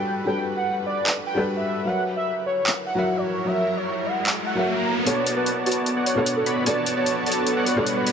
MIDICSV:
0, 0, Header, 1, 7, 480
1, 0, Start_track
1, 0, Key_signature, 2, "minor"
1, 0, Tempo, 400000
1, 318, Time_signature, 4, 2, 24, 8
1, 9745, End_track
2, 0, Start_track
2, 0, Title_t, "Soft synth lead"
2, 0, Program_c, 0, 80
2, 0, Note_on_c, 0, 79, 86
2, 169, Note_off_c, 0, 79, 0
2, 317, Note_on_c, 0, 79, 97
2, 528, Note_off_c, 0, 79, 0
2, 681, Note_on_c, 0, 78, 95
2, 889, Note_off_c, 0, 78, 0
2, 1037, Note_on_c, 0, 74, 97
2, 1317, Note_off_c, 0, 74, 0
2, 1516, Note_on_c, 0, 79, 93
2, 1727, Note_off_c, 0, 79, 0
2, 1881, Note_on_c, 0, 76, 89
2, 2235, Note_on_c, 0, 78, 99
2, 2253, Note_off_c, 0, 76, 0
2, 2447, Note_off_c, 0, 78, 0
2, 2598, Note_on_c, 0, 76, 92
2, 2808, Note_off_c, 0, 76, 0
2, 2957, Note_on_c, 0, 73, 89
2, 3237, Note_off_c, 0, 73, 0
2, 3436, Note_on_c, 0, 78, 95
2, 3802, Note_on_c, 0, 73, 89
2, 3820, Note_off_c, 0, 78, 0
2, 4156, Note_on_c, 0, 76, 103
2, 4174, Note_off_c, 0, 73, 0
2, 4519, Note_on_c, 0, 73, 96
2, 4537, Note_off_c, 0, 76, 0
2, 4876, Note_on_c, 0, 78, 93
2, 4894, Note_off_c, 0, 73, 0
2, 5157, Note_off_c, 0, 78, 0
2, 5356, Note_on_c, 0, 78, 95
2, 5567, Note_off_c, 0, 78, 0
2, 5721, Note_on_c, 0, 82, 91
2, 5929, Note_off_c, 0, 82, 0
2, 6075, Note_on_c, 0, 73, 96
2, 6286, Note_off_c, 0, 73, 0
2, 6439, Note_on_c, 0, 71, 94
2, 6648, Note_off_c, 0, 71, 0
2, 6795, Note_on_c, 0, 66, 95
2, 7077, Note_off_c, 0, 66, 0
2, 7276, Note_on_c, 0, 73, 94
2, 7487, Note_off_c, 0, 73, 0
2, 7640, Note_on_c, 0, 69, 94
2, 7849, Note_off_c, 0, 69, 0
2, 7996, Note_on_c, 0, 74, 99
2, 8207, Note_off_c, 0, 74, 0
2, 8362, Note_on_c, 0, 73, 95
2, 8570, Note_off_c, 0, 73, 0
2, 8719, Note_on_c, 0, 69, 91
2, 9201, Note_on_c, 0, 74, 96
2, 9219, Note_off_c, 0, 69, 0
2, 9410, Note_off_c, 0, 74, 0
2, 9563, Note_on_c, 0, 71, 98
2, 9745, Note_off_c, 0, 71, 0
2, 9745, End_track
3, 0, Start_track
3, 0, Title_t, "Supersaw synth"
3, 0, Program_c, 1, 81
3, 6076, Note_on_c, 1, 66, 94
3, 6077, Note_on_c, 1, 59, 101
3, 6077, Note_on_c, 1, 73, 88
3, 6077, Note_on_c, 1, 74, 96
3, 6077, Note_on_c, 1, 81, 107
3, 6411, Note_off_c, 1, 59, 0
3, 6411, Note_off_c, 1, 66, 0
3, 6411, Note_off_c, 1, 73, 0
3, 6411, Note_off_c, 1, 74, 0
3, 6411, Note_off_c, 1, 81, 0
3, 6440, Note_on_c, 1, 81, 97
3, 6441, Note_on_c, 1, 59, 89
3, 6441, Note_on_c, 1, 66, 85
3, 6441, Note_on_c, 1, 73, 82
3, 6441, Note_on_c, 1, 74, 81
3, 6769, Note_off_c, 1, 81, 0
3, 6770, Note_off_c, 1, 59, 0
3, 6770, Note_off_c, 1, 66, 0
3, 6770, Note_off_c, 1, 73, 0
3, 6770, Note_off_c, 1, 74, 0
3, 6798, Note_on_c, 1, 59, 88
3, 6798, Note_on_c, 1, 66, 80
3, 6798, Note_on_c, 1, 73, 83
3, 6798, Note_on_c, 1, 74, 83
3, 6798, Note_on_c, 1, 81, 100
3, 7132, Note_off_c, 1, 59, 0
3, 7132, Note_off_c, 1, 66, 0
3, 7132, Note_off_c, 1, 73, 0
3, 7132, Note_off_c, 1, 74, 0
3, 7132, Note_off_c, 1, 81, 0
3, 7160, Note_on_c, 1, 73, 79
3, 7161, Note_on_c, 1, 59, 90
3, 7161, Note_on_c, 1, 66, 81
3, 7161, Note_on_c, 1, 74, 82
3, 7161, Note_on_c, 1, 78, 95
3, 7376, Note_off_c, 1, 73, 0
3, 7376, Note_off_c, 1, 74, 0
3, 7377, Note_off_c, 1, 59, 0
3, 7377, Note_off_c, 1, 66, 0
3, 7377, Note_off_c, 1, 78, 0
3, 7401, Note_on_c, 1, 66, 68
3, 7401, Note_on_c, 1, 73, 68
3, 7401, Note_on_c, 1, 74, 68
3, 7401, Note_on_c, 1, 78, 85
3, 7402, Note_on_c, 1, 59, 75
3, 7730, Note_off_c, 1, 59, 0
3, 7730, Note_off_c, 1, 66, 0
3, 7730, Note_off_c, 1, 73, 0
3, 7730, Note_off_c, 1, 74, 0
3, 7730, Note_off_c, 1, 78, 0
3, 7756, Note_on_c, 1, 59, 96
3, 7756, Note_on_c, 1, 66, 90
3, 7756, Note_on_c, 1, 73, 85
3, 7756, Note_on_c, 1, 74, 86
3, 7756, Note_on_c, 1, 83, 107
3, 7969, Note_off_c, 1, 59, 0
3, 7969, Note_off_c, 1, 66, 0
3, 7969, Note_off_c, 1, 73, 0
3, 7969, Note_off_c, 1, 74, 0
3, 7969, Note_off_c, 1, 83, 0
3, 7996, Note_on_c, 1, 66, 92
3, 7996, Note_on_c, 1, 74, 93
3, 7996, Note_on_c, 1, 81, 113
3, 7997, Note_on_c, 1, 59, 100
3, 7997, Note_on_c, 1, 73, 90
3, 8331, Note_off_c, 1, 59, 0
3, 8331, Note_off_c, 1, 66, 0
3, 8331, Note_off_c, 1, 73, 0
3, 8331, Note_off_c, 1, 74, 0
3, 8331, Note_off_c, 1, 81, 0
3, 8360, Note_on_c, 1, 73, 80
3, 8361, Note_on_c, 1, 59, 86
3, 8361, Note_on_c, 1, 66, 82
3, 8361, Note_on_c, 1, 74, 77
3, 8361, Note_on_c, 1, 81, 96
3, 8689, Note_off_c, 1, 73, 0
3, 8690, Note_off_c, 1, 59, 0
3, 8690, Note_off_c, 1, 66, 0
3, 8690, Note_off_c, 1, 74, 0
3, 8690, Note_off_c, 1, 81, 0
3, 8717, Note_on_c, 1, 73, 84
3, 8718, Note_on_c, 1, 59, 95
3, 8718, Note_on_c, 1, 66, 83
3, 8718, Note_on_c, 1, 74, 83
3, 8718, Note_on_c, 1, 81, 101
3, 9051, Note_off_c, 1, 73, 0
3, 9052, Note_off_c, 1, 59, 0
3, 9052, Note_off_c, 1, 66, 0
3, 9052, Note_off_c, 1, 74, 0
3, 9052, Note_off_c, 1, 81, 0
3, 9081, Note_on_c, 1, 59, 89
3, 9081, Note_on_c, 1, 73, 82
3, 9082, Note_on_c, 1, 66, 83
3, 9082, Note_on_c, 1, 74, 79
3, 9082, Note_on_c, 1, 78, 98
3, 9297, Note_off_c, 1, 59, 0
3, 9297, Note_off_c, 1, 66, 0
3, 9297, Note_off_c, 1, 73, 0
3, 9297, Note_off_c, 1, 74, 0
3, 9297, Note_off_c, 1, 78, 0
3, 9322, Note_on_c, 1, 59, 79
3, 9322, Note_on_c, 1, 66, 69
3, 9322, Note_on_c, 1, 73, 67
3, 9322, Note_on_c, 1, 74, 70
3, 9322, Note_on_c, 1, 78, 87
3, 9650, Note_off_c, 1, 59, 0
3, 9650, Note_off_c, 1, 66, 0
3, 9650, Note_off_c, 1, 73, 0
3, 9650, Note_off_c, 1, 74, 0
3, 9650, Note_off_c, 1, 78, 0
3, 9678, Note_on_c, 1, 59, 91
3, 9678, Note_on_c, 1, 66, 86
3, 9678, Note_on_c, 1, 74, 89
3, 9678, Note_on_c, 1, 83, 107
3, 9679, Note_on_c, 1, 73, 89
3, 9745, Note_off_c, 1, 59, 0
3, 9745, Note_off_c, 1, 66, 0
3, 9745, Note_off_c, 1, 73, 0
3, 9745, Note_off_c, 1, 74, 0
3, 9745, Note_off_c, 1, 83, 0
3, 9745, End_track
4, 0, Start_track
4, 0, Title_t, "Felt piano"
4, 0, Program_c, 2, 0
4, 0, Control_c, 2, 64, 127
4, 0, Note_on_c, 2, 55, 86
4, 0, Note_on_c, 2, 62, 83
4, 0, Note_on_c, 2, 66, 78
4, 0, Note_on_c, 2, 69, 84
4, 0, Note_on_c, 2, 71, 98
4, 274, Note_off_c, 2, 55, 0
4, 283, Note_off_c, 2, 62, 0
4, 289, Note_off_c, 2, 66, 0
4, 292, Note_on_c, 2, 55, 69
4, 295, Note_off_c, 2, 69, 0
4, 300, Note_off_c, 2, 71, 0
4, 304, Note_on_c, 2, 62, 66
4, 316, Note_on_c, 2, 66, 61
4, 328, Note_on_c, 2, 69, 62
4, 341, Note_on_c, 2, 71, 75
4, 1596, Note_off_c, 2, 55, 0
4, 1605, Note_off_c, 2, 62, 0
4, 1611, Note_off_c, 2, 66, 0
4, 1614, Note_on_c, 2, 55, 94
4, 1617, Note_off_c, 2, 69, 0
4, 1623, Note_off_c, 2, 71, 0
4, 1626, Note_on_c, 2, 62, 81
4, 1638, Note_on_c, 2, 66, 86
4, 1650, Note_on_c, 2, 69, 80
4, 1662, Note_on_c, 2, 71, 101
4, 2196, Note_off_c, 2, 55, 0
4, 2202, Note_off_c, 2, 62, 0
4, 2206, Note_off_c, 2, 66, 0
4, 2212, Note_on_c, 2, 54, 69
4, 2214, Note_off_c, 2, 69, 0
4, 2220, Note_off_c, 2, 71, 0
4, 2224, Note_on_c, 2, 66, 67
4, 2236, Note_on_c, 2, 70, 63
4, 2247, Note_on_c, 2, 73, 62
4, 2253, Control_c, 2, 64, 0
4, 2260, Note_on_c, 2, 76, 80
4, 2445, Control_c, 2, 64, 127
4, 3516, Note_off_c, 2, 54, 0
4, 3525, Note_off_c, 2, 66, 0
4, 3531, Note_off_c, 2, 70, 0
4, 3534, Note_on_c, 2, 54, 96
4, 3537, Note_off_c, 2, 73, 0
4, 3543, Note_off_c, 2, 76, 0
4, 3547, Note_on_c, 2, 66, 85
4, 3558, Note_on_c, 2, 70, 84
4, 3570, Note_on_c, 2, 73, 80
4, 3583, Note_on_c, 2, 76, 102
4, 4114, Note_off_c, 2, 54, 0
4, 4123, Note_off_c, 2, 66, 0
4, 4128, Note_off_c, 2, 70, 0
4, 4132, Note_on_c, 2, 54, 69
4, 4134, Note_off_c, 2, 73, 0
4, 4141, Note_off_c, 2, 76, 0
4, 4144, Note_on_c, 2, 66, 64
4, 4156, Note_on_c, 2, 70, 64
4, 4167, Note_on_c, 2, 73, 62
4, 4180, Note_on_c, 2, 76, 76
4, 5439, Note_off_c, 2, 54, 0
4, 5445, Note_off_c, 2, 66, 0
4, 5451, Note_off_c, 2, 70, 0
4, 5456, Note_off_c, 2, 73, 0
4, 5457, Note_on_c, 2, 54, 89
4, 5463, Note_off_c, 2, 76, 0
4, 5469, Note_on_c, 2, 66, 83
4, 5481, Note_on_c, 2, 70, 86
4, 5493, Note_on_c, 2, 73, 82
4, 5505, Note_on_c, 2, 76, 102
4, 6038, Note_off_c, 2, 54, 0
4, 6044, Note_off_c, 2, 66, 0
4, 6050, Note_off_c, 2, 70, 0
4, 6051, Note_on_c, 2, 47, 73
4, 6056, Note_off_c, 2, 73, 0
4, 6062, Note_off_c, 2, 76, 0
4, 6064, Note_on_c, 2, 59, 67
4, 6076, Note_on_c, 2, 62, 65
4, 6088, Note_on_c, 2, 69, 66
4, 6095, Control_c, 2, 64, 0
4, 6099, Note_on_c, 2, 73, 78
4, 6304, Control_c, 2, 64, 127
4, 7358, Note_off_c, 2, 47, 0
4, 7365, Note_off_c, 2, 59, 0
4, 7371, Note_off_c, 2, 62, 0
4, 7376, Note_on_c, 2, 47, 97
4, 7377, Note_off_c, 2, 69, 0
4, 7382, Note_off_c, 2, 73, 0
4, 7388, Note_on_c, 2, 59, 86
4, 7400, Note_on_c, 2, 62, 86
4, 7411, Note_on_c, 2, 69, 81
4, 7423, Note_on_c, 2, 73, 103
4, 7954, Note_off_c, 2, 47, 0
4, 7963, Note_off_c, 2, 59, 0
4, 7969, Note_off_c, 2, 62, 0
4, 7972, Note_on_c, 2, 47, 70
4, 7975, Note_off_c, 2, 69, 0
4, 7981, Note_off_c, 2, 73, 0
4, 7984, Note_on_c, 2, 59, 68
4, 7995, Note_on_c, 2, 62, 67
4, 8008, Note_on_c, 2, 69, 65
4, 8019, Note_on_c, 2, 73, 76
4, 9278, Note_off_c, 2, 47, 0
4, 9285, Note_off_c, 2, 59, 0
4, 9291, Note_off_c, 2, 62, 0
4, 9296, Note_on_c, 2, 47, 91
4, 9297, Note_off_c, 2, 69, 0
4, 9303, Note_off_c, 2, 73, 0
4, 9307, Note_on_c, 2, 59, 87
4, 9320, Note_on_c, 2, 62, 86
4, 9331, Note_on_c, 2, 69, 86
4, 9344, Note_on_c, 2, 73, 102
4, 9745, Note_off_c, 2, 47, 0
4, 9745, Note_off_c, 2, 59, 0
4, 9745, Note_off_c, 2, 62, 0
4, 9745, Note_off_c, 2, 69, 0
4, 9745, Note_off_c, 2, 73, 0
4, 9745, End_track
5, 0, Start_track
5, 0, Title_t, "Ambient pad"
5, 0, Program_c, 3, 92
5, 0, Note_on_c, 3, 55, 75
5, 0, Note_on_c, 3, 66, 66
5, 0, Note_on_c, 3, 71, 82
5, 2199, Note_off_c, 3, 55, 0
5, 2199, Note_off_c, 3, 66, 0
5, 2199, Note_off_c, 3, 71, 0
5, 2239, Note_on_c, 3, 54, 76
5, 2239, Note_on_c, 3, 64, 70
5, 2239, Note_on_c, 3, 70, 86
5, 6040, Note_off_c, 3, 54, 0
5, 6040, Note_off_c, 3, 64, 0
5, 6040, Note_off_c, 3, 70, 0
5, 6080, Note_on_c, 3, 73, 85
5, 6081, Note_on_c, 3, 59, 80
5, 6081, Note_on_c, 3, 62, 71
5, 6081, Note_on_c, 3, 69, 74
5, 9745, Note_off_c, 3, 59, 0
5, 9745, Note_off_c, 3, 62, 0
5, 9745, Note_off_c, 3, 69, 0
5, 9745, Note_off_c, 3, 73, 0
5, 9745, End_track
6, 0, Start_track
6, 0, Title_t, "Riser"
6, 0, Program_c, 4, 103
6, 2237, Note_on_c, 4, 60, 71
6, 6077, Note_off_c, 4, 60, 0
6, 6077, Note_on_c, 4, 60, 73
6, 9745, Note_off_c, 4, 60, 0
6, 9745, End_track
7, 0, Start_track
7, 0, Title_t, "Drums"
7, 1278, Note_on_c, 9, 39, 80
7, 1398, Note_off_c, 9, 39, 0
7, 3197, Note_on_c, 9, 39, 83
7, 3317, Note_off_c, 9, 39, 0
7, 5117, Note_on_c, 9, 39, 90
7, 5237, Note_off_c, 9, 39, 0
7, 6079, Note_on_c, 9, 42, 79
7, 6199, Note_off_c, 9, 42, 0
7, 6318, Note_on_c, 9, 42, 69
7, 6438, Note_off_c, 9, 42, 0
7, 6556, Note_on_c, 9, 42, 77
7, 6676, Note_off_c, 9, 42, 0
7, 6796, Note_on_c, 9, 42, 50
7, 6858, Note_off_c, 9, 42, 0
7, 6858, Note_on_c, 9, 42, 64
7, 6978, Note_off_c, 9, 42, 0
7, 7036, Note_on_c, 9, 42, 78
7, 7156, Note_off_c, 9, 42, 0
7, 7276, Note_on_c, 9, 42, 68
7, 7396, Note_off_c, 9, 42, 0
7, 7516, Note_on_c, 9, 42, 80
7, 7636, Note_off_c, 9, 42, 0
7, 7756, Note_on_c, 9, 42, 62
7, 7876, Note_off_c, 9, 42, 0
7, 7996, Note_on_c, 9, 42, 79
7, 8116, Note_off_c, 9, 42, 0
7, 8236, Note_on_c, 9, 42, 65
7, 8356, Note_off_c, 9, 42, 0
7, 8476, Note_on_c, 9, 42, 76
7, 8596, Note_off_c, 9, 42, 0
7, 8717, Note_on_c, 9, 42, 47
7, 8779, Note_off_c, 9, 42, 0
7, 8779, Note_on_c, 9, 42, 66
7, 8899, Note_off_c, 9, 42, 0
7, 8959, Note_on_c, 9, 42, 78
7, 9079, Note_off_c, 9, 42, 0
7, 9197, Note_on_c, 9, 42, 63
7, 9317, Note_off_c, 9, 42, 0
7, 9438, Note_on_c, 9, 42, 75
7, 9558, Note_off_c, 9, 42, 0
7, 9678, Note_on_c, 9, 42, 60
7, 9745, Note_off_c, 9, 42, 0
7, 9745, End_track
0, 0, End_of_file